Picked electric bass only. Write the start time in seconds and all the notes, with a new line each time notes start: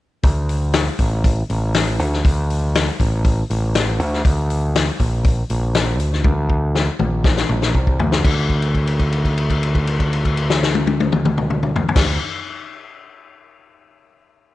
0.24 D2
0.99 A1
1.50 A1
2.00 D2
2.25 D2
3.00 A1
3.50 A1
4.00 D2
4.25 D2
5.00 A#1
5.50 A#1
6.00 D2
6.25 D2
6.99 A#1
7.49 A#1
7.75 C2
7.99 D2
8.24 D2
11.96 D2